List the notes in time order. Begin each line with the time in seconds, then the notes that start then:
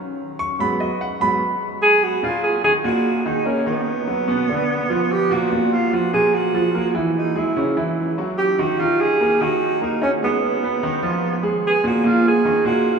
0.39 C#6
0.59 G#2 F#3 B3 B5
0.80 D#5
1.01 F#5
1.20 G#2 F#3 B3 B5
1.82 G#4
2.04 F#4
2.23 A#2 A#3 F4
2.44 G#4
2.64 D#3 D#4 G#4
2.84 A#2 A#3 F#4
3.26 D#3 D#4
3.46 A#3 C#4 A#4
3.66 D#3 B3 D#4
4.07 F#3 F#4
4.28 B2 B3
4.49 D3 D4
4.90 F3 F4
5.12 G4
5.30 A#2 A#3 F#4
5.52 A#2 A#3
5.73 F4
5.93 F3 F4 F#4
6.13 A#2 A#3 G#4
6.35 F#4
6.54 F3 F4
6.75 A#3 A#4
6.95 E3 E4
7.18 D#4
7.36 G#3 E4 G#4
7.56 C#3 C#4
7.77 E3 E4
8.18 F#3 F#4
8.38 G4
8.59 D#3 D#4 F#4
8.80 D#3 D#4 F4
9.01 G#4
9.20 A#3 A#4
9.41 D#3 D#4 F#4
9.81 A#3 D#4 A#4
10.02 C#4 D#4 D#5
10.22 G#3 B3 G#4
10.63 B3 B4
10.83 D#3 D#4
11.03 F3 F4
11.43 G#3 G#4
11.67 G#4
11.84 A#2 A#3 F#4
12.04 A#2 A#3 F4
12.28 G#4
12.45 D#3 D#4
12.65 A#2 A#3 F#4